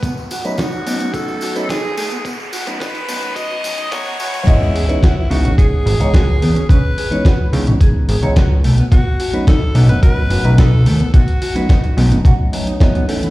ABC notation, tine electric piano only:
X:1
M:4/4
L:1/16
Q:1/4=108
K:Bmix
V:1 name="Tine electric piano"
z3 [F,A,B,CD] z2 [F,A,B,CD]4- [F,A,B,CD] [F,A,B,CD] z4 | z3 [F,A,B,CD] z2 [F,A,B,CD]4 [F,A,B,CD]2 [F,A,B,CD]2 [E,G,B,CE]2 | [E,G,B,Cd]3 [E,G,B,CD] z2 [E,G,B,CD]4- [E,G,B,CD] [E,G,B,CD] z4 | z3 [E,G,B,CD] z2 [E,G,B,CD]4- [E,G,B,CD] [E,G,B,CD] z4 |
z3 [F,A,B,CD] z2 [F,A,B,CD]4- [F,A,B,CD] [F,A,B,CD] z4 | z3 [F,A,B,CD] z2 [F,A,B,CD]4 [F,A,B,CD]2 [F,A,B,CD]2 [E,A,B,CA]2 |]